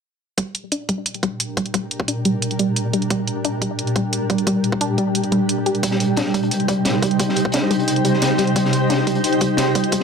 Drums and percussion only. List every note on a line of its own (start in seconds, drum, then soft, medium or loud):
0.38 kick loud
0.38 closed hi-hat medium
0.55 closed hi-hat medium
0.72 closed hi-hat medium
0.89 kick medium
0.89 closed hi-hat medium
1.06 closed hi-hat medium
1.14 closed hi-hat soft
1.23 kick loud
1.23 closed hi-hat medium
1.40 closed hi-hat medium
1.57 kick loud
1.57 closed hi-hat medium
1.66 closed hi-hat soft
1.74 kick loud
1.74 closed hi-hat medium
1.91 closed hi-hat medium
2.00 kick loud
2.08 closed hi-hat medium
2.25 closed hi-hat medium
2.42 closed hi-hat medium
2.51 closed hi-hat soft
2.59 closed hi-hat medium
2.76 closed hi-hat medium
2.93 closed hi-hat medium
3.02 closed hi-hat soft
3.10 kick loud
3.10 closed hi-hat medium
3.27 closed hi-hat medium
3.45 closed hi-hat medium
3.62 kick medium
3.62 closed hi-hat medium
3.79 closed hi-hat medium
3.87 closed hi-hat soft
3.96 kick loud
3.96 closed hi-hat medium
4.13 closed hi-hat medium
4.30 kick loud
4.30 closed hi-hat medium
4.38 closed hi-hat soft
4.47 kick loud
4.47 closed hi-hat medium
4.64 closed hi-hat medium
4.72 kick loud
4.81 closed hi-hat medium
4.98 closed hi-hat medium
5.15 closed hi-hat medium
5.24 closed hi-hat soft
5.32 closed hi-hat medium
5.49 closed hi-hat medium
5.66 closed hi-hat medium
5.75 closed hi-hat soft
5.83 kick loud
5.83 closed hi-hat medium
5.91 snare soft
6.00 closed hi-hat medium
6.17 snare loud
6.17 closed hi-hat medium
6.26 snare soft
6.34 kick medium
6.34 closed hi-hat medium
6.43 closed hi-hat soft
6.51 closed hi-hat medium
6.60 closed hi-hat soft
6.68 kick loud
6.68 closed hi-hat medium
6.85 snare loud
6.85 closed hi-hat medium
7.02 kick loud
7.02 closed hi-hat medium
7.11 closed hi-hat soft
7.20 kick loud
7.20 closed hi-hat medium
7.29 snare soft
7.36 closed hi-hat medium
7.45 kick loud
7.52 closed hi-hat medium
7.54 snare loud
7.54 closed hi-hat medium
7.71 closed hi-hat medium
7.79 closed hi-hat soft
7.88 closed hi-hat medium
7.96 closed hi-hat soft
8.05 closed hi-hat medium
8.14 snare soft
8.22 snare loud
8.22 closed hi-hat medium
8.38 snare medium
8.38 closed hi-hat medium
8.47 closed hi-hat soft
8.56 kick loud
8.56 closed hi-hat medium
8.65 snare medium
8.73 closed hi-hat medium
8.90 snare loud
8.90 closed hi-hat medium
8.98 snare soft
9.07 kick medium
9.07 closed hi-hat medium
9.15 closed hi-hat soft
9.24 closed hi-hat medium
9.33 closed hi-hat soft
9.41 kick loud
9.41 closed hi-hat medium
9.57 snare loud
9.57 closed hi-hat medium
9.75 kick loud
9.75 closed hi-hat medium
9.84 closed hi-hat soft
9.92 kick loud
9.92 closed hi-hat medium